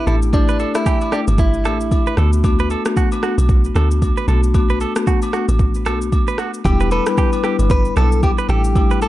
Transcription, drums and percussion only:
0.07 high agogo, shaker
0.22 shaker
0.33 kick, high agogo, shaker
0.48 shaker
0.59 high agogo, shaker
0.75 cross-stick, shaker
0.86 kick, low woodblock, shaker
1.01 high agogo, shaker
1.12 cross-stick, shaker
1.28 high agogo, shaker
1.38 kick, shaker
1.54 shaker
1.65 cross-stick, high agogo, shaker
1.81 shaker
1.91 kick, high agogo, shaker
2.07 shaker
2.17 cross-stick, high agogo, shaker
2.33 shaker
2.44 kick, high agogo, shaker
2.59 shaker
2.70 high agogo, shaker
2.85 cross-stick, shaker
2.97 kick, low woodblock, shaker
3.12 high agogo, shaker
3.23 cross-stick, shaker
3.38 high agogo, shaker
3.49 kick, shaker
3.64 shaker
3.76 cross-stick, high agogo, shaker
3.91 shaker
4.02 kick, high agogo, shaker
4.17 shaker
4.28 high agogo, shaker
4.43 shaker
4.54 kick, high agogo, shaker
4.70 shaker
4.80 high agogo, shaker
4.96 cross-stick, shaker
5.07 kick, low woodblock, shaker
5.22 high agogo, shaker
5.33 cross-stick, shaker
5.49 high agogo, shaker
5.59 kick, shaker
5.74 shaker
5.86 cross-stick, high agogo, shaker
6.02 shaker
6.12 kick, high agogo, shaker
6.28 shaker
6.38 cross-stick, high agogo, shaker
6.54 shaker
6.65 kick, high agogo, shaker
6.80 shaker
6.91 high agogo, shaker
7.06 cross-stick, shaker
7.18 kick, low woodblock, shaker
7.33 high agogo, shaker
7.44 cross-stick, shaker
7.59 high agogo, shaker
7.70 kick, shaker
7.85 shaker
7.96 cross-stick, high agogo, shaker
8.12 shaker
8.23 kick, high agogo, shaker
8.38 shaker
8.49 high agogo, shaker
8.64 shaker
8.76 kick, high agogo, shaker
8.91 shaker
9.02 high agogo, shaker

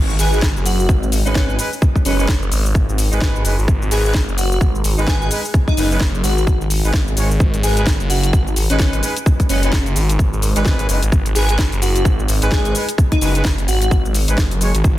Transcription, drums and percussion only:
0.10 cabasa
0.19 open hi-hat, cabasa
0.33 cabasa
0.42 kick, snare, cabasa
0.57 cabasa
0.66 open hi-hat, cabasa
0.80 cabasa
0.89 kick, cabasa
1.03 cabasa
1.12 open hi-hat, cabasa
1.26 cabasa
1.35 kick, snare, cabasa
1.50 cabasa
1.59 open hi-hat, cabasa
1.73 cabasa
1.82 kick, cabasa
1.96 kick, cabasa
2.05 open hi-hat, cabasa
2.19 cabasa
2.28 kick, snare, cabasa
2.43 cabasa
2.52 open hi-hat, cabasa
2.66 cabasa
2.75 kick, cabasa
2.89 cabasa
2.98 open hi-hat, cabasa
3.12 cabasa
3.21 kick, snare, cabasa
3.36 cabasa
3.45 open hi-hat, cabasa
3.59 cabasa
3.68 kick, cabasa
3.82 cabasa
3.91 open hi-hat, cabasa
4.05 cabasa
4.14 kick, snare, cabasa
4.29 cabasa
4.38 open hi-hat, cabasa
4.52 cabasa
4.61 kick, cabasa
4.75 cabasa
4.84 open hi-hat, cabasa
4.98 cabasa
5.07 kick, snare, cabasa
5.22 cabasa
5.31 open hi-hat, cabasa
5.45 cabasa
5.54 kick, cabasa
5.68 kick, cabasa
5.77 open hi-hat, cabasa
5.92 cabasa
6.00 kick, snare, cabasa
6.15 cabasa
6.24 open hi-hat, cabasa
6.38 cabasa
6.47 kick, cabasa
6.61 cabasa
6.70 open hi-hat, cabasa
6.85 cabasa
6.93 kick, snare, cabasa
7.08 cabasa
7.17 open hi-hat, cabasa
7.31 cabasa
7.40 kick, cabasa
7.54 closed hi-hat, cabasa
7.63 open hi-hat, cabasa
7.77 closed hi-hat, cabasa
7.86 kick, snare, cabasa
8.00 closed hi-hat, cabasa
8.10 open hi-hat, cabasa
8.23 closed hi-hat, cabasa
8.33 kick, cabasa
8.47 cabasa
8.56 open hi-hat, cabasa
8.70 closed hi-hat, cabasa
8.79 kick, snare, cabasa
8.93 closed hi-hat, cabasa
9.03 open hi-hat, cabasa
9.16 closed hi-hat, cabasa
9.26 kick, cabasa
9.40 kick, closed hi-hat, cabasa
9.49 open hi-hat, cabasa
9.63 closed hi-hat, cabasa
9.72 kick, snare, cabasa
9.86 closed hi-hat, cabasa
9.96 open hi-hat, cabasa
10.09 closed hi-hat, cabasa
10.19 kick, cabasa
10.33 cabasa
10.42 open hi-hat, cabasa
10.56 closed hi-hat, cabasa
10.65 kick, snare, cabasa
10.79 closed hi-hat, cabasa
10.89 open hi-hat, cabasa
11.03 closed hi-hat, cabasa
11.12 kick, cabasa
11.26 closed hi-hat, cabasa
11.35 open hi-hat, cabasa
11.49 closed hi-hat, cabasa
11.59 kick, snare, cabasa
11.72 closed hi-hat, cabasa
11.82 open hi-hat, cabasa
11.96 closed hi-hat, cabasa
12.05 kick, cabasa
12.19 cabasa
12.28 open hi-hat, cabasa
12.42 closed hi-hat, cabasa
12.52 kick, snare, cabasa
12.65 closed hi-hat, cabasa
12.75 open hi-hat, cabasa
12.89 closed hi-hat, cabasa
12.98 kick, cabasa
13.12 kick, closed hi-hat, cabasa
13.21 open hi-hat, cabasa
13.35 closed hi-hat, cabasa
13.45 kick, snare, cabasa
13.58 closed hi-hat, cabasa
13.68 open hi-hat, cabasa
13.82 closed hi-hat, cabasa
13.91 kick, cabasa
14.05 cabasa
14.14 open hi-hat, cabasa
14.28 closed hi-hat, cabasa
14.38 kick, snare, cabasa
14.51 closed hi-hat, cabasa
14.61 open hi-hat, cabasa
14.75 closed hi-hat, cabasa
14.84 kick, cabasa

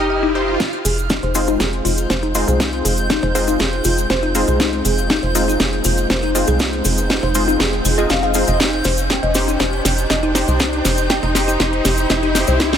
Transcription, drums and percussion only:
0.60 kick, snare, closed hi-hat, cabasa
0.73 closed hi-hat
0.85 open hi-hat, cabasa
0.98 closed hi-hat, cabasa
1.10 kick, snare, closed hi-hat, cabasa
1.23 closed hi-hat
1.35 open hi-hat, cabasa
1.48 closed hi-hat, cabasa
1.60 kick, snare, closed hi-hat, cabasa
1.73 closed hi-hat
1.85 open hi-hat, cabasa
1.98 closed hi-hat, cabasa
2.10 kick, snare, closed hi-hat, cabasa
2.23 closed hi-hat
2.35 open hi-hat, cabasa
2.48 closed hi-hat, cabasa
2.60 kick, snare, closed hi-hat, cabasa
2.73 closed hi-hat
2.85 open hi-hat, cabasa
2.97 closed hi-hat, cabasa
3.10 kick, snare, closed hi-hat, cabasa
3.23 kick, closed hi-hat
3.35 open hi-hat, cabasa
3.48 closed hi-hat, cabasa
3.59 kick, snare, closed hi-hat, cabasa
3.73 closed hi-hat
3.84 open hi-hat, cabasa
3.98 closed hi-hat, cabasa
4.10 kick, snare, closed hi-hat, cabasa
4.23 closed hi-hat
4.35 open hi-hat, cabasa
4.48 closed hi-hat, cabasa
4.60 kick, snare, closed hi-hat, cabasa
4.73 closed hi-hat
4.85 open hi-hat, cabasa
4.98 closed hi-hat, cabasa
5.10 kick, snare, closed hi-hat, cabasa
5.23 closed hi-hat
5.35 open hi-hat, cabasa
5.48 closed hi-hat, cabasa
5.60 kick, snare, closed hi-hat, cabasa
5.73 closed hi-hat
5.84 open hi-hat, cabasa
5.97 closed hi-hat, cabasa
6.10 kick, snare, closed hi-hat, cabasa
6.23 closed hi-hat
6.35 open hi-hat, cabasa
6.47 closed hi-hat, cabasa
6.59 kick, snare, closed hi-hat, cabasa
6.73 closed hi-hat
6.85 open hi-hat, cabasa
6.98 closed hi-hat, cabasa
7.10 kick, snare, closed hi-hat, cabasa
7.23 kick, closed hi-hat
7.35 open hi-hat, cabasa
7.48 cabasa
7.60 kick, snare, closed hi-hat, cabasa
7.73 closed hi-hat
7.85 open hi-hat, cabasa
7.98 cabasa
8.10 kick, snare, closed hi-hat, cabasa
8.23 closed hi-hat
8.34 open hi-hat, cabasa
8.47 closed hi-hat, cabasa
8.60 kick, snare, closed hi-hat, cabasa
8.73 closed hi-hat
8.84 snare, open hi-hat, cabasa
8.98 closed hi-hat, cabasa
9.10 kick, snare, closed hi-hat, cabasa
9.23 closed hi-hat
9.35 snare, open hi-hat, cabasa
9.48 closed hi-hat, cabasa
9.60 kick, snare, closed hi-hat, cabasa
9.73 closed hi-hat
9.85 snare, open hi-hat, cabasa
9.98 closed hi-hat, cabasa
10.10 kick, snare, closed hi-hat, cabasa
10.23 closed hi-hat
10.35 snare, open hi-hat, cabasa
10.48 closed hi-hat, cabasa
10.60 kick, snare, closed hi-hat, cabasa
10.73 closed hi-hat
10.85 snare, open hi-hat, cabasa
10.98 closed hi-hat, cabasa
11.10 kick, snare, closed hi-hat, cabasa
11.23 kick, closed hi-hat
11.35 snare, open hi-hat, cabasa
11.48 closed hi-hat, cabasa
11.60 kick, snare, closed hi-hat, cabasa
11.73 closed hi-hat
11.85 snare, open hi-hat, cabasa
11.97 closed hi-hat, cabasa
12.10 kick, snare, closed hi-hat, cabasa
12.23 closed hi-hat
12.35 snare, open hi-hat, cabasa
12.47 closed hi-hat, cabasa
12.60 kick, snare, closed hi-hat, cabasa
12.73 snare, closed hi-hat

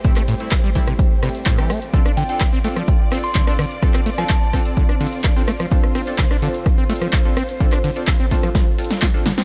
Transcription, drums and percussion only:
0.04 kick, closed hi-hat
0.16 cross-stick, clap
0.27 closed hi-hat, open hi-hat, ride
0.40 closed hi-hat
0.51 kick, cross-stick, snare, clap, closed hi-hat
0.75 kick, closed hi-hat, open hi-hat, ride
0.88 cross-stick, closed hi-hat
0.99 kick, closed hi-hat
1.11 closed hi-hat
1.23 cross-stick, closed hi-hat, open hi-hat, ride
1.29 closed hi-hat
1.35 closed hi-hat
1.46 kick, snare, clap, closed hi-hat
1.58 cross-stick
1.70 cross-stick, closed hi-hat, open hi-hat, ride
1.82 closed hi-hat
1.94 kick, closed hi-hat
2.06 cross-stick, closed hi-hat
2.17 closed hi-hat, open hi-hat, ride
2.29 closed hi-hat
2.40 kick, cross-stick, snare, clap, closed hi-hat
2.53 snare
2.64 closed hi-hat, open hi-hat, ride
2.76 cross-stick, closed hi-hat
2.88 kick, closed hi-hat
3.11 cross-stick, closed hi-hat, open hi-hat, ride
3.18 closed hi-hat
3.24 closed hi-hat
3.35 kick, snare, clap, closed hi-hat
3.47 cross-stick
3.59 cross-stick, closed hi-hat, open hi-hat, ride
3.71 closed hi-hat
3.82 kick, cross-stick, closed hi-hat
3.94 cross-stick, clap
4.06 closed hi-hat, open hi-hat, ride
4.18 cross-stick, closed hi-hat
4.29 kick, snare, clap, closed hi-hat
4.53 kick, cross-stick, closed hi-hat, open hi-hat, ride
4.65 closed hi-hat
4.77 kick, closed hi-hat
4.89 cross-stick, closed hi-hat
5.01 closed hi-hat, open hi-hat, ride
5.07 closed hi-hat
5.13 closed hi-hat
5.24 kick, cross-stick, snare, clap, closed hi-hat
5.48 cross-stick, closed hi-hat, open hi-hat, ride
5.60 cross-stick, closed hi-hat
5.71 kick, closed hi-hat
5.84 cross-stick, closed hi-hat
5.95 cross-stick, closed hi-hat, open hi-hat, ride
6.07 closed hi-hat
6.18 kick, snare, clap, closed hi-hat
6.31 cross-stick, snare
6.42 closed hi-hat, open hi-hat, ride
6.54 closed hi-hat
6.66 kick, cross-stick, closed hi-hat
6.89 closed hi-hat, open hi-hat, ride
6.96 closed hi-hat
7.02 cross-stick, closed hi-hat
7.13 kick, snare, clap, closed hi-hat
7.37 cross-stick, closed hi-hat, open hi-hat, ride
7.49 closed hi-hat
7.60 kick, closed hi-hat
7.72 cross-stick, clap
7.84 closed hi-hat, open hi-hat, ride
7.96 closed hi-hat
8.07 kick, cross-stick, snare, clap, closed hi-hat
8.31 kick, closed hi-hat, open hi-hat, ride
8.43 cross-stick, closed hi-hat
8.55 kick, snare, closed hi-hat
8.78 closed hi-hat, open hi-hat, ride
8.84 closed hi-hat
8.90 snare, closed hi-hat
9.02 kick, snare, clap, closed hi-hat
9.14 closed hi-hat
9.26 snare, closed hi-hat, open hi-hat, ride
9.37 snare, closed hi-hat

